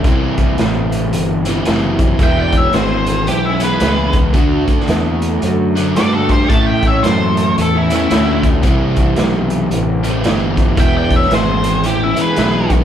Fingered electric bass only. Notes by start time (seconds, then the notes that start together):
0.05 C2
0.59 A1
1.13 G1
1.67 F#1
2.19 E1
2.74 G#1
3.27 B1
3.82 C#2
4.34 D2
4.68 muted fingered electric bass stroke
4.88 E2
5.43 F#2
5.96 G2
6.51 A2
7.03 F#2
7.58 E2
8.11 D2
8.64 C2
9.18 B1
9.72 A1
10.26 G1
10.78 E1
11.31 G#1
11.85 A1
12.18 muted fingered electric bass stroke
12.38 B1